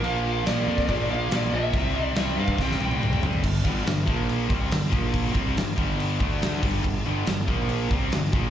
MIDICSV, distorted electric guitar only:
0, 0, Header, 1, 2, 480
1, 0, Start_track
1, 0, Tempo, 426136
1, 36, Time_signature, 4, 2, 24, 8
1, 9574, End_track
2, 0, Start_track
2, 0, Title_t, "Distorted electric guitar"
2, 0, Program_c, 0, 30
2, 53, Note_on_c, 0, 46, 103
2, 61, Note_on_c, 0, 53, 110
2, 68, Note_on_c, 0, 58, 103
2, 276, Note_off_c, 0, 46, 0
2, 287, Note_off_c, 0, 53, 0
2, 289, Note_on_c, 0, 46, 91
2, 292, Note_off_c, 0, 58, 0
2, 301, Note_on_c, 0, 53, 95
2, 305, Note_on_c, 0, 58, 97
2, 517, Note_off_c, 0, 46, 0
2, 528, Note_off_c, 0, 53, 0
2, 530, Note_on_c, 0, 46, 94
2, 535, Note_off_c, 0, 58, 0
2, 542, Note_on_c, 0, 53, 93
2, 548, Note_on_c, 0, 58, 111
2, 744, Note_off_c, 0, 46, 0
2, 753, Note_off_c, 0, 53, 0
2, 757, Note_on_c, 0, 46, 91
2, 763, Note_off_c, 0, 58, 0
2, 766, Note_on_c, 0, 53, 94
2, 776, Note_on_c, 0, 58, 83
2, 976, Note_off_c, 0, 46, 0
2, 985, Note_off_c, 0, 53, 0
2, 990, Note_on_c, 0, 46, 91
2, 994, Note_off_c, 0, 58, 0
2, 998, Note_on_c, 0, 53, 94
2, 1008, Note_on_c, 0, 58, 110
2, 1222, Note_off_c, 0, 46, 0
2, 1229, Note_off_c, 0, 53, 0
2, 1236, Note_off_c, 0, 58, 0
2, 1236, Note_on_c, 0, 46, 91
2, 1243, Note_on_c, 0, 53, 92
2, 1249, Note_on_c, 0, 58, 93
2, 1448, Note_off_c, 0, 46, 0
2, 1459, Note_off_c, 0, 53, 0
2, 1461, Note_on_c, 0, 46, 87
2, 1469, Note_off_c, 0, 58, 0
2, 1473, Note_on_c, 0, 53, 88
2, 1482, Note_on_c, 0, 58, 98
2, 1689, Note_off_c, 0, 46, 0
2, 1702, Note_on_c, 0, 46, 89
2, 1705, Note_off_c, 0, 53, 0
2, 1707, Note_off_c, 0, 58, 0
2, 1719, Note_on_c, 0, 53, 94
2, 1720, Note_on_c, 0, 58, 95
2, 1933, Note_off_c, 0, 46, 0
2, 1941, Note_off_c, 0, 53, 0
2, 1942, Note_off_c, 0, 58, 0
2, 1954, Note_on_c, 0, 48, 92
2, 1959, Note_on_c, 0, 55, 97
2, 1965, Note_on_c, 0, 60, 108
2, 2166, Note_off_c, 0, 48, 0
2, 2178, Note_off_c, 0, 55, 0
2, 2180, Note_on_c, 0, 48, 79
2, 2185, Note_off_c, 0, 60, 0
2, 2191, Note_on_c, 0, 55, 94
2, 2198, Note_on_c, 0, 60, 97
2, 2401, Note_off_c, 0, 48, 0
2, 2414, Note_off_c, 0, 55, 0
2, 2415, Note_on_c, 0, 48, 98
2, 2424, Note_off_c, 0, 60, 0
2, 2427, Note_on_c, 0, 55, 94
2, 2438, Note_on_c, 0, 60, 112
2, 2650, Note_off_c, 0, 48, 0
2, 2658, Note_off_c, 0, 55, 0
2, 2663, Note_on_c, 0, 48, 88
2, 2668, Note_off_c, 0, 60, 0
2, 2671, Note_on_c, 0, 55, 87
2, 2682, Note_on_c, 0, 60, 97
2, 2883, Note_off_c, 0, 48, 0
2, 2890, Note_off_c, 0, 55, 0
2, 2891, Note_off_c, 0, 60, 0
2, 2897, Note_on_c, 0, 48, 94
2, 2904, Note_on_c, 0, 55, 95
2, 2904, Note_on_c, 0, 60, 105
2, 3125, Note_off_c, 0, 48, 0
2, 3138, Note_off_c, 0, 55, 0
2, 3139, Note_on_c, 0, 48, 85
2, 3152, Note_off_c, 0, 60, 0
2, 3152, Note_on_c, 0, 55, 84
2, 3165, Note_on_c, 0, 60, 96
2, 3357, Note_off_c, 0, 48, 0
2, 3369, Note_off_c, 0, 55, 0
2, 3370, Note_off_c, 0, 60, 0
2, 3371, Note_on_c, 0, 48, 95
2, 3383, Note_on_c, 0, 55, 89
2, 3383, Note_on_c, 0, 60, 108
2, 3615, Note_off_c, 0, 55, 0
2, 3617, Note_off_c, 0, 48, 0
2, 3629, Note_off_c, 0, 60, 0
2, 3629, Note_on_c, 0, 55, 89
2, 3631, Note_on_c, 0, 48, 85
2, 3643, Note_on_c, 0, 60, 88
2, 3855, Note_off_c, 0, 55, 0
2, 3856, Note_off_c, 0, 48, 0
2, 3862, Note_off_c, 0, 60, 0
2, 3866, Note_on_c, 0, 43, 61
2, 3866, Note_on_c, 0, 50, 75
2, 4060, Note_off_c, 0, 43, 0
2, 4060, Note_off_c, 0, 50, 0
2, 4101, Note_on_c, 0, 43, 82
2, 4109, Note_on_c, 0, 50, 94
2, 4116, Note_on_c, 0, 55, 97
2, 4330, Note_off_c, 0, 43, 0
2, 4331, Note_off_c, 0, 50, 0
2, 4343, Note_on_c, 0, 43, 61
2, 4344, Note_on_c, 0, 50, 63
2, 4346, Note_off_c, 0, 55, 0
2, 4539, Note_off_c, 0, 43, 0
2, 4540, Note_off_c, 0, 50, 0
2, 4577, Note_on_c, 0, 46, 84
2, 4588, Note_on_c, 0, 53, 82
2, 4598, Note_on_c, 0, 58, 88
2, 5045, Note_off_c, 0, 46, 0
2, 5050, Note_on_c, 0, 48, 90
2, 5059, Note_off_c, 0, 53, 0
2, 5061, Note_off_c, 0, 58, 0
2, 5064, Note_on_c, 0, 55, 94
2, 5066, Note_on_c, 0, 60, 96
2, 5293, Note_off_c, 0, 48, 0
2, 5294, Note_on_c, 0, 43, 66
2, 5300, Note_off_c, 0, 55, 0
2, 5301, Note_off_c, 0, 60, 0
2, 5304, Note_on_c, 0, 50, 74
2, 5495, Note_off_c, 0, 43, 0
2, 5500, Note_off_c, 0, 50, 0
2, 5514, Note_on_c, 0, 46, 97
2, 5518, Note_on_c, 0, 53, 99
2, 5523, Note_on_c, 0, 58, 99
2, 5990, Note_off_c, 0, 46, 0
2, 5994, Note_on_c, 0, 48, 82
2, 5997, Note_off_c, 0, 53, 0
2, 6000, Note_off_c, 0, 58, 0
2, 6002, Note_on_c, 0, 55, 98
2, 6004, Note_on_c, 0, 60, 100
2, 6242, Note_on_c, 0, 43, 60
2, 6245, Note_off_c, 0, 48, 0
2, 6249, Note_off_c, 0, 55, 0
2, 6250, Note_off_c, 0, 60, 0
2, 6253, Note_on_c, 0, 50, 77
2, 6448, Note_off_c, 0, 43, 0
2, 6454, Note_off_c, 0, 50, 0
2, 6488, Note_on_c, 0, 43, 84
2, 6493, Note_on_c, 0, 50, 85
2, 6501, Note_on_c, 0, 55, 94
2, 6954, Note_off_c, 0, 50, 0
2, 6967, Note_on_c, 0, 50, 88
2, 6969, Note_off_c, 0, 55, 0
2, 6973, Note_off_c, 0, 43, 0
2, 6974, Note_on_c, 0, 57, 95
2, 6979, Note_on_c, 0, 62, 99
2, 7448, Note_off_c, 0, 50, 0
2, 7453, Note_on_c, 0, 43, 98
2, 7455, Note_off_c, 0, 57, 0
2, 7458, Note_off_c, 0, 62, 0
2, 7461, Note_on_c, 0, 50, 105
2, 7466, Note_on_c, 0, 55, 106
2, 7688, Note_off_c, 0, 43, 0
2, 7689, Note_off_c, 0, 50, 0
2, 7702, Note_off_c, 0, 55, 0
2, 7702, Note_on_c, 0, 43, 68
2, 7703, Note_on_c, 0, 50, 75
2, 7899, Note_off_c, 0, 43, 0
2, 7899, Note_off_c, 0, 50, 0
2, 7952, Note_on_c, 0, 43, 87
2, 7956, Note_on_c, 0, 50, 98
2, 7967, Note_on_c, 0, 55, 102
2, 8178, Note_off_c, 0, 43, 0
2, 8186, Note_off_c, 0, 50, 0
2, 8192, Note_off_c, 0, 55, 0
2, 8192, Note_on_c, 0, 43, 63
2, 8201, Note_on_c, 0, 50, 77
2, 8384, Note_off_c, 0, 43, 0
2, 8388, Note_off_c, 0, 50, 0
2, 8416, Note_on_c, 0, 46, 93
2, 8431, Note_on_c, 0, 53, 105
2, 8433, Note_on_c, 0, 58, 101
2, 8891, Note_off_c, 0, 46, 0
2, 8896, Note_on_c, 0, 48, 85
2, 8901, Note_off_c, 0, 53, 0
2, 8903, Note_off_c, 0, 58, 0
2, 8905, Note_on_c, 0, 55, 94
2, 8907, Note_on_c, 0, 60, 102
2, 9137, Note_off_c, 0, 48, 0
2, 9142, Note_off_c, 0, 55, 0
2, 9142, Note_off_c, 0, 60, 0
2, 9144, Note_on_c, 0, 43, 65
2, 9151, Note_on_c, 0, 50, 81
2, 9340, Note_off_c, 0, 43, 0
2, 9344, Note_off_c, 0, 50, 0
2, 9373, Note_on_c, 0, 46, 104
2, 9380, Note_on_c, 0, 53, 102
2, 9390, Note_on_c, 0, 58, 106
2, 9574, Note_off_c, 0, 46, 0
2, 9574, Note_off_c, 0, 53, 0
2, 9574, Note_off_c, 0, 58, 0
2, 9574, End_track
0, 0, End_of_file